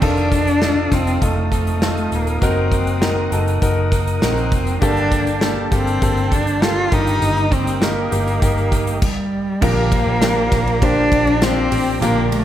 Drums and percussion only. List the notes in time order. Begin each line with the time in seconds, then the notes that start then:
0.02 kick, crash
0.17 closed hi-hat
0.32 kick, closed hi-hat
0.47 closed hi-hat
0.62 snare
0.92 kick, snare, closed hi-hat
1.07 closed hi-hat
1.22 kick, closed hi-hat
1.52 kick, closed hi-hat
1.67 closed hi-hat
1.82 snare
1.97 closed hi-hat
2.12 closed hi-hat
2.27 closed hi-hat
2.42 kick, closed hi-hat
2.72 kick, closed hi-hat
2.87 closed hi-hat
3.02 snare
3.32 closed hi-hat
3.47 closed hi-hat
3.62 kick, closed hi-hat
3.92 kick, closed hi-hat
4.07 closed hi-hat
4.22 snare
4.37 closed hi-hat
4.52 kick, closed hi-hat
4.67 closed hi-hat
4.82 kick, closed hi-hat
4.97 closed hi-hat
5.12 kick, closed hi-hat
5.27 closed hi-hat
5.41 snare
5.72 kick, snare, closed hi-hat
5.87 closed hi-hat
6.02 kick, closed hi-hat
6.17 closed hi-hat
6.32 kick, closed hi-hat
6.47 closed hi-hat
6.62 snare
6.92 kick, closed hi-hat
7.07 closed hi-hat
7.22 closed hi-hat
7.37 closed hi-hat
7.52 kick, closed hi-hat
7.67 closed hi-hat
7.82 snare
8.12 closed hi-hat
8.27 closed hi-hat
8.42 kick, closed hi-hat
8.57 closed hi-hat
8.72 kick, closed hi-hat
8.87 closed hi-hat
9.02 kick, crash
9.62 kick, crash
9.92 kick, ride
10.22 snare, ride
10.52 kick, snare, ride
10.67 ride
10.82 kick, ride
11.12 kick, ride
11.27 ride
11.42 snare, ride
11.72 open hi-hat, ride
12.02 hi-hat pedal, ride
12.32 ride